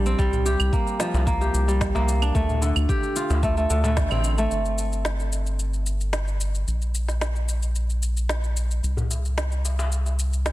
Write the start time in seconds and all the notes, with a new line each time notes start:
Already playing: A#1 D3 G3 A#3 D4 F4
0.06 C4, shaker
0.19 C2 G3, kick, shaker
0.33 darbuka dum, shaker
0.46 G4, darbuka ka, darbuka tek, shaker
0.60 C2, claves, shaker
0.73 A#3, kick, shaker
0.87 shaker
1.00 F3, snare, darbuka ka, shaker
1.14 C2, darbuka tek, shaker
1.27 A#3, kick, shaker
1.41 G4, darbuka ka, shaker
1.54 C2, shaker
1.68 G3, shaker
1.81 kick, snare, shaker
1.95 C2 A#3, darbuka ka, darbuka tek, shaker
2.08 darbuka ka, shaker
2.22 D4, claves, shaker
2.35 D2 A3, kick, shaker
2.49 darbuka dum, shaker
2.61 D3, darbuka ka, darbuka tek, shaker
2.76 D2, claves, shaker
2.89 G4, kick, shaker
3.03 shaker
3.16 F4, darbuka ka, shaker
3.30 D2, darbuka tek, shaker
3.43 A3, kick, shaker
3.57 A3, shaker
3.70 D2 D3, shaker
3.84 A3, darbuka ka, darbuka tek, darbuka dum, shaker
3.97 kick, snare, shaker
4.11 A1 C4, darbuka ka, darbuka dum, claves, shaker
4.24 darbuka ka, shaker
4.38 A3, shaker
4.51 G1, shaker
4.65 shaker
4.78 shaker
4.93 shaker
5.05 snare, shaker
5.20 shaker
5.33 shaker
5.46 shaker
5.59 shaker
5.73 shaker
5.86 shaker
6.01 shaker
6.13 snare, shaker
6.28 shaker
6.40 shaker
6.55 shaker
6.67 A#1, shaker
6.82 shaker
6.95 shaker
7.08 snare, shaker
7.21 snare, shaker
7.36 shaker
7.49 shaker
7.63 shaker
7.75 shaker
7.90 shaker
8.03 shaker
8.17 shaker
8.29 snare, shaker
8.44 shaker
8.57 shaker
8.71 shaker
8.83 C2, shaker
8.97 darbuka dum, shaker
9.11 darbuka ka, shaker
9.25 shaker
9.38 snare, shaker
9.52 shaker
9.65 darbuka ka, shaker
9.79 darbuka tek, shaker
9.92 shaker
10.06 darbuka ka, shaker
10.19 shaker
10.33 shaker
10.46 snare, shaker